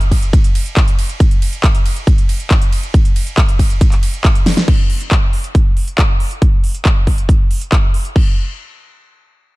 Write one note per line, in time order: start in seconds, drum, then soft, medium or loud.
0.01 closed hi-hat medium
0.12 kick medium
0.12 open hi-hat medium
0.12 ride medium
0.23 closed hi-hat medium
0.33 kick loud
0.33 closed hi-hat medium
0.33 ride medium
0.44 closed hi-hat medium
0.55 open hi-hat loud
0.55 ride medium
0.66 closed hi-hat medium
0.77 kick loud
0.77 clap loud
0.77 closed hi-hat medium
0.77 ride medium
0.88 closed hi-hat medium
0.99 open hi-hat medium
0.99 ride medium
1.09 closed hi-hat medium
1.20 kick loud
1.20 closed hi-hat medium
1.20 ride medium
1.31 closed hi-hat medium
1.42 open hi-hat loud
1.42 ride medium
1.53 closed hi-hat medium
1.64 kick loud
1.64 clap loud
1.64 closed hi-hat medium
1.64 ride medium
1.75 closed hi-hat medium
1.86 open hi-hat medium
1.86 ride medium
1.96 closed hi-hat medium
2.07 kick loud
2.07 closed hi-hat medium
2.07 ride medium
2.18 closed hi-hat medium
2.29 open hi-hat loud
2.29 ride medium
2.40 closed hi-hat medium
2.51 kick loud
2.51 clap loud
2.51 closed hi-hat medium
2.51 ride medium
2.62 closed hi-hat medium
2.72 open hi-hat medium
2.72 ride medium
2.83 closed hi-hat medium
2.94 kick loud
2.94 closed hi-hat medium
2.94 ride medium
3.05 closed hi-hat medium
3.16 open hi-hat loud
3.16 ride medium
3.27 closed hi-hat medium
3.38 kick loud
3.38 clap loud
3.38 closed hi-hat medium
3.38 ride medium
3.49 closed hi-hat medium
3.59 kick medium
3.59 open hi-hat medium
3.59 ride medium
3.70 closed hi-hat medium
3.81 kick loud
3.81 closed hi-hat medium
3.81 ride medium
3.92 clap soft
3.92 closed hi-hat medium
4.03 open hi-hat loud
4.03 ride medium
4.14 closed hi-hat medium
4.25 kick loud
4.25 clap loud
4.25 closed hi-hat medium
4.25 ride medium
4.35 closed hi-hat medium
4.46 snare medium
4.46 open hi-hat medium
4.46 ride medium
4.57 snare loud
4.57 closed hi-hat medium
4.68 kick loud
4.68 closed hi-hat medium
4.68 crash medium
4.90 open hi-hat loud
5.01 closed hi-hat medium
5.11 kick loud
5.11 clap loud
5.11 closed hi-hat medium
5.33 open hi-hat medium
5.44 closed hi-hat medium
5.55 kick loud
5.55 closed hi-hat medium
5.77 open hi-hat loud
5.88 closed hi-hat medium
5.98 kick loud
5.98 clap loud
5.98 closed hi-hat medium
6.20 open hi-hat medium
6.31 closed hi-hat medium
6.42 kick loud
6.42 closed hi-hat medium
6.64 open hi-hat loud
6.75 closed hi-hat medium
6.85 kick loud
6.85 clap loud
6.85 closed hi-hat medium
7.07 kick medium
7.07 open hi-hat medium
7.18 closed hi-hat medium
7.29 kick loud
7.29 closed hi-hat medium
7.51 open hi-hat loud
7.62 closed hi-hat medium
7.72 kick loud
7.72 clap loud
7.72 closed hi-hat medium
7.94 open hi-hat medium
8.05 closed hi-hat medium
8.16 kick loud
8.16 crash medium